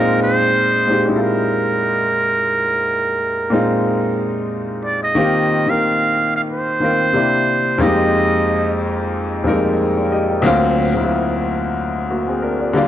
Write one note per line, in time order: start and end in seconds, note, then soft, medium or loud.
0.00 0.71 A#2 loud
0.00 0.71 G#3 medium
0.00 0.72 C4 medium
0.00 0.76 D#4 loud
0.00 0.73 F4 loud
0.00 0.19 A#4 loud
0.23 1.11 C5 loud
0.87 1.02 A#2 medium
0.87 1.03 G#3 medium
0.87 1.03 C4 medium
0.87 1.04 D#4 medium
0.91 1.05 G4 medium
1.05 2.13 A#2 medium
1.05 2.13 G#3 medium
1.05 2.14 C4 medium
1.05 2.14 D#4 medium
1.09 1.14 E4 medium
1.16 2.18 F4 medium
1.16 1.23 A4 medium
1.21 4.51 A#4 loud
3.50 4.60 A#2 medium
3.50 4.60 G#3 medium
3.50 4.61 C4 medium
3.50 4.61 D#4 medium
3.54 4.62 F4 medium
4.85 5.02 D5 medium
5.03 5.71 D#5 medium
5.15 5.57 D#3 loud
5.15 5.58 A#3 medium
5.15 5.58 C4 medium
5.15 5.59 F4 medium
5.19 5.59 G4 loud
5.66 6.61 D#3 medium
5.66 6.61 A#3 medium
5.66 6.62 C4 medium
5.66 6.62 F4 medium
5.66 6.35 F5 loud
5.71 6.63 A#4 medium
6.36 6.42 F5 medium
6.50 7.84 C5 loud
6.80 7.14 D#3 medium
6.80 7.12 A#3 medium
6.80 7.15 C4 medium
6.80 7.15 F4 medium
6.84 7.16 A#4 medium
7.13 7.69 C3 medium
7.13 7.69 A#3 medium
7.13 7.70 D4 medium
7.13 7.70 E4 medium
7.17 7.71 G4 medium
7.78 8.88 F2 loud
7.78 7.87 G3 medium
7.78 8.89 A#3 loud
7.78 8.89 C4 medium
7.78 8.90 D#4 medium
7.78 8.80 D#5 medium
7.83 8.92 G#3 medium
7.83 8.90 G4 loud
9.44 10.00 F2 medium
9.44 9.52 G3 medium
9.44 10.00 A#3 medium
9.44 10.01 C4 medium
9.44 10.01 D#4 medium
9.48 10.03 G#3 medium
9.48 9.80 A#4 loud
9.97 10.11 F4 soft
9.97 10.11 D5 soft
10.12 10.29 G4 medium
10.12 10.29 D#5 medium
10.29 10.61 A#4 medium
10.29 10.61 G5 medium
10.42 10.84 D2 loud
10.42 10.85 F#3 loud
10.42 10.85 A#3 loud
10.42 10.86 C4 loud
10.46 10.86 F4 loud
10.94 11.88 D2 medium
10.94 11.89 F#3 medium
10.94 11.89 A#3 medium
10.94 11.90 C4 medium
10.98 11.03 E4 medium
11.04 11.94 F4 medium
12.10 12.27 A#3 soft
12.10 12.27 F#4 medium
12.28 12.42 C4 medium
12.28 12.41 G#4 medium
12.42 12.60 D4 medium
12.42 12.60 A#4 medium
12.60 12.88 F#4 soft
12.60 12.88 D5 medium
12.73 12.88 D3 loud
12.73 12.88 G3 medium
12.73 12.88 A#3 medium
12.73 12.88 D4 medium
12.77 12.88 F4 loud